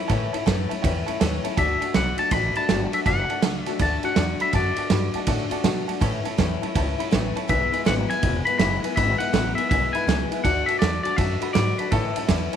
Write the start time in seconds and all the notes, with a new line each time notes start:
0.00 C#4
0.08 A2 E3 A3 C#4 E4 C#5 E5 A5, kick, ride
0.33 A3 C#4 E4 C#5 E5 A5, muted upright bass stroke, ride
0.46 F#2 A2 E3 A3 C#4 E4 C#5 E5 A5, kick, snare, ride
0.69 A3 C#4 E4 C#5 E5 A5, muted upright bass stroke, ride
0.82 E2 E3 A3 C#4 E4 C#5 E5 G5, kick, ride
1.06 A3 C#4 E4 C#5 E5 A5, muted upright bass stroke, ride
1.20 D#2 A2 E3 A3 C#4 E4 C#5 E5 A5, snare, ride
1.44 A3 C#4 E4 C#5 E5 A5, muted upright bass stroke, ride
1.57 D2 D3 A3 D4 F#4 D5 E5 F#5 A5, kick, ride
1.81 A3 D4 F#4 D5 F#5 A5, muted upright bass stroke, ride
1.94 B1 D3 A3 D4 F#4 D5 F#5 B5, snare, ride
2.17 A3 D4 F#4 D5 F#5 A5, muted upright bass stroke, ride
2.31 A1 D3 A3 D4 F#4 D5 F#5 A5 B5, kick, ride
2.55 A3 D4 F#4 D5 F#5 A5 B5, muted upright bass stroke, ride
2.69 G1 D3 A3 D4 F#4 D5 F#5 A5, snare, ride
2.92 A3 D4 F#4 D5 E5 F#5 A5, muted upright bass stroke, ride
3.05 F#1 D3 A3 D4 F#4 D5 F#5 A5, kick, ride
3.30 A3 D4 F#4 D5 F#5 A5, muted upright bass stroke, ride
3.42 C#2 D3 A3 D4 F#4 D5 F#5 A5, snare, ride
3.63 E5, snare, ride
3.67 A3 D4 F#4 D5 F#5 A5, muted upright bass stroke
3.79 D2 D3 A3 D4 F#4 D5 F#5 A5, kick, ride
4.03 A3 D4 F#4 D5 F#5 A5, muted upright bass stroke, ride
4.16 E2 D3 A3 D4 F#4 D5 F#5 A5, snare, ride
4.40 A3 D4 F#4 D5 E5 F#5 B5, muted upright bass stroke, ride
4.53 F#2 D3 A3 D4 F#4 D5 F#5 A5, kick, ride
4.77 A3 D4 F#4 D5 F#5 A5, muted upright bass stroke, ride
4.90 G2 D3 A3 D4 F#4 D5 F#5 B5, snare, ride
5.14 A3 D4 F#4 D5 F#5 A5, muted upright bass stroke, ride
5.27 A2 D3 A3 D4 F#4 D5 F#5 A5, kick, ride
5.50 A3 D4 F#4 D5 F#5 A5, muted upright bass stroke, ride
5.64 B2 D3 A3 D4 F#4 D5 F#5 A5, snare, ride
5.87 A3 D4 F#4 D5 F#5 A5, muted upright bass stroke, ride
6.00 A2 E3 A3 C#4 E4 C#5 E5 A5, kick, ride
6.23 A3 C#4 E4 C#5 E5 A5, muted upright bass stroke, ride
6.38 E2 A2 E3 A3 C#4 E4 C#5 E5 A5, kick, snare, ride
6.61 A3 C#4 E4 C#5 E5 A5, muted upright bass stroke, ride
6.74 C#2 E3 A3 C#4 E4 C#5 E5 A5, kick, ride
6.98 A3 C#4 E4 C#5 E5 B5, muted upright bass stroke, ride
7.11 A1 A2 E3 A3 C#4 E4 C#5 E5 G5, snare, ride
7.35 A3 C#4 E4 C#5 E5 A5, muted upright bass stroke, ride
7.48 B1 E2 B2 E3 G#3 B3 E4 B4 E5 G#5, kick, ride
7.72 E3 G#3 B3 E4 B4 E5 G#5, muted upright bass stroke, ride
7.85 G#1 E2 B2 E3 G#3 B3 E4 B4 E5 F#5 G#5, snare, ride
8.10 E3 G#3 B3 E4 B4 E5 G#5, muted upright bass stroke, snare, ride
8.23 E1 E3 G#3 B3 E4 B4 E5 G#5, kick, ride
8.45 E3 G#3 B3 E4 B4 E5 F#5 B5, muted upright bass stroke, ride
8.58 F#1 E2 B2 E3 G#3 B3 E4 B4 E5 G#5 B5, snare, ride
8.83 E3 G#3 B3 E4 B4 E5 G#5, muted upright bass stroke, ride
8.96 G#1 E2 B2 E3 G#3 B3 E4 B4 E5 B5, kick, ride
9.18 E3 G#3 B3 E4 B4 E5 F#5 G#5, muted upright bass stroke, ride
9.33 A1 E2 B2 E3 G#3 B3 E4 B4 E5 G#5, snare, ride
9.55 B3 E4 B4 E5 G#5, muted upright bass stroke, ride
9.60 E3 G#3
9.69 B1 E3 G#3 B3 E4 B4 E5 G#5, kick, ride
9.93 G#3 B3 E4 B4 E5 G#5 B5, muted upright bass stroke, ride
9.97 E3
10.07 C#2 E2 B2 E3 G#3 B3 E4 B4 E5 G#5, snare, ride
10.30 E3 G#3 B3 E4 B4 E5 G#5, muted upright bass stroke, ride
10.44 D2 D3 A3 D4 F#4 D5 F#5 A5, kick, ride
10.66 A3 D4 F#4 D5 E5 F#5 A5, muted upright bass stroke, ride
10.79 E2 D3 A3 D4 F#4 D5 F#5 A5, snare, ride
11.03 A3 D4 F#4 D5 F#5 A5, muted upright bass stroke, ride
11.16 F#2 D3 A3 D4 F#4 D5 E5 F#5 A5, kick, ride
11.41 A3 D4 F#4 D5 F#5 B5, muted upright bass stroke, ride
11.53 G#2 D3 A3 D4 F#4 D5 F#5 B5, snare, ride
11.78 A3 D4 F#4 B4 D5 F#5 A5, muted upright bass stroke, ride
11.92 A2 E3 A3 C#4 E4 A4 C#5 E5 A5, kick, ride
12.16 A3 C#4 E4 C#5 E5 A5, muted upright bass stroke, ride
12.29 E2 A2 E3 A3 C#4 E4 C#5 E5 A5, kick, snare, ride
12.53 E4, ride